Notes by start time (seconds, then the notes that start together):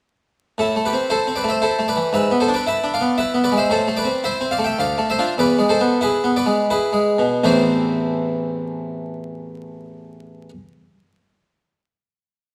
0.58 A2 E4 A4
0.76 A3
0.85 G4 B4
0.93 C4
1.10 E4 A4 C5
1.27 C4
1.36 B4 D5
1.44 A3
1.49 C5 E5
1.62 E4 A4 C5
1.79 A3
1.88 B4 D5
1.96 E3
2.13 G#2 B4 E5
2.31 B3
2.40 A4 C5
2.48 D4
2.54 B4 D5
2.67 E4 B4 E5
2.84 D4
2.94 D5 F5
3.01 B3
3.18 E4 B4 E5
3.34 B3
3.44 B4 D5
3.52 G#3
3.57 C5 E5
3.70 A2 A4 C5
3.88 A3
3.97 B4 D5
4.05 C4
4.24 E4 C5 E5
4.41 C4
4.51 D5 F5
4.58 A3
4.64 E5 G5
4.79 D2 D5 F5
4.98 A3
5.10 C5 E5
5.19 D4 F4
5.38 E2 B4 D5
5.59 G#3
5.69 A4 C5
5.81 B3
6.01 E4 G#4 B4
6.24 B3
6.36 B4 D5
6.46 G#3
6.70 E4 G#4 B4
6.93 G#3
7.18 B2
7.44 A1 E2 E3 A3 C4 E4 C5